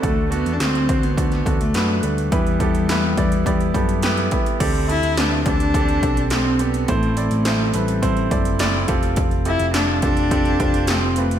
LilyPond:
<<
  \new Staff \with { instrumentName = "Grand piano" } { \time 4/4 \key d \mixolydian \tempo 4 = 105 <a d' fis' a'>8 <a d' fis' a'>8 <a d' fis' a'>8 <a d' fis' c''>8 <a d' fis' a'>8 <a d' fis' a'>8 <a d' fis' b'>8 <a d' fis' b'>8 | <b e' g' b'>8 <b e' g' a'>8 <b e' g' b'>8 <b e' g' d''>8 <b e' g' d''>8 <b e' g' a'>8 <b e' g' b'>8 <b e' g' b'>8 | <c' d' g' a'>8 <c' d' g' a'>8 <c' d' g' b'>8 <c' d' g' a'>8 <c' d' g' a'>8 <c' d' g' a'>8 <c' d' g' a'>8 <c' d' g' a'>8 | <c' e' a' c''>8 <c' e' a' d''>8 <c' e' a' c''>8 <c' e' a' b'>8 <c' e' a' c''>8 <c' e' a' d''>8 <c' e' a' d''>8 <c' f' g' a'>8~ |
<c' f' g' a'>8 <c' f' g' a'>8 <c' f' g' a'>8 <c' f' g' a'>8 <c' f' g' a'>8 <c' f' g' c''>8 <c' f' g' a'>8 <c' f' g' b'>8 | }
  \new Staff \with { instrumentName = "Grand piano" } { \clef bass \time 4/4 \key d \mixolydian d4. r2 r8 | e4. r2 r8 | d4. r2 r8 | a,4. r2 r8 |
r1 | }
  \new Staff \with { instrumentName = "Cello" } { \time 4/4 \key d \mixolydian a8 b16. d'32 c'8. b4 a8. g8~ | g2.~ g8 r8 | r8 e'8 d'8 d'4. c'8 b8 | a8 a4 g4 r4. |
r8 e'8 d'8 d'4. c'8 a8 | }
  \new Staff \with { instrumentName = "Picked electric bass" } { \clef bass \time 4/4 \key d \mixolydian d,8. e,16 d,4. d,8 fis,8 d,8 | e,4. e,4 fis,4 r8 | d,8. d,8. d,4 b,,4. | a,,8. a,,8. a,,4 fis,,4 f,,8~ |
f,,8. f,,8. f,,4 f,,4. | }
  \new DrumStaff \with { instrumentName = "Drums" } \drummode { \time 4/4 <hh bd>8 hh16 hh16 <hc hh sn>16 hh16 <hh bd>16 hh16 <hh bd>16 <hh sn>16 <hh bd>16 hh16 <hc hh sn>8 hh16 hh16 | <hh bd>16 hh16 <hh bd>16 hh16 <hc hh sn>8 <hh bd>16 hh16 <hh bd>16 hh16 <hh bd>16 hh16 <hc hh sn>16 hh16 <hh bd>16 hh16 | <cymc hh bd>16 hh16 hh16 hh16 <hc hh sn>8 <hh bd>16 hh16 <hh bd>16 hh16 <hh bd>16 hh16 <hc hh sn>8 hh16 hh16 | <hh bd>16 hh16 hh16 hh16 <hc hh sn>8 hh16 hh16 <hh bd>16 hh16 <hh bd>16 hh16 <hc hh sn>8 <hh bd>16 hh16 |
<hh bd>16 hh16 hh16 hh16 <hc hh sn>8 <hh bd>16 hh16 <hh bd>16 hh16 <hh bd>16 hh16 <hc hh sn>8 hh16 hh16 | }
>>